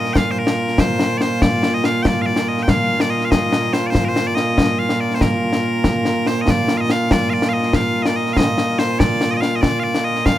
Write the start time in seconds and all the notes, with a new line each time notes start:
Already playing: A#2 A#3 F4 D#5
0.05 snare
0.13 F5 G5, concert bass drum, snare
0.31 C5
0.39 A#4
0.47 snare
0.68 snare
0.78 C5, concert bass drum, snare
0.99 snare
1.18 C5 D5, snare
1.42 D5, concert bass drum, snare
1.63 snare
1.74 D#5
1.84 F5, snare
2.03 G5, concert bass drum, snare
2.07 D5
2.22 F5
2.26 D5
2.36 snare
2.48 D#5
2.58 snare
2.63 G5
2.68 F5, concert bass drum, snare
3.00 D5, snare
3.10 D#5
3.21 F5, snare
3.31 D#5, concert bass drum, snare
3.52 snare
3.73 C5, snare
3.87 C5 D5
3.95 concert bass drum, snare
4.05 A#4 C5
4.16 snare
4.27 D5
4.35 D#5, snare
4.58 concert bass drum, snare
4.79 F5
4.89 snare
5.00 D5
5.11 snare
5.15 C5
5.21 A#4, concert bass drum, snare
5.53 snare
5.84 concert bass drum, snare
6.05 snare
6.26 C5, snare
6.41 D#5
6.48 D5, concert bass drum, snare
6.68 snare
6.77 D#5 F5
6.90 F5, snare
7.11 D5, concert bass drum, snare
7.30 D5 F5
7.42 snare
7.49 F5
7.53 D#5
7.63 snare
7.73 F5, concert bass drum, snare
8.02 D5 D#5, snare
8.16 D#5
8.26 snare
8.33 F5, concert bass drum, snare
8.37 D#5
8.58 snare
8.79 C5, snare
8.99 D5, concert bass drum, snare
9.21 snare
9.31 D5 D#5
9.36 D#5
9.41 F5, snare
9.56 D#5
9.61 D5, concert bass drum, snare
9.79 D5 F5
9.95 snare
10.04 D#5
10.16 snare
10.26 F5, concert bass drum, snare